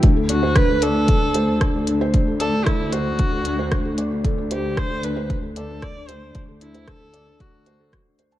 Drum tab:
HH |x-x-x-x-x-x-x-x-|x-x-x-x-x-x-x-x-|x-x-x-x-x-x-x-x-|x-xxx-x-x-x-x-xx|
SD |----r-------r---|----r-------r---|----r-------r---|----r-------r---|
BD |o---o---o---o---|o---o---o---o---|o---o---o---o---|o---o---o---o---|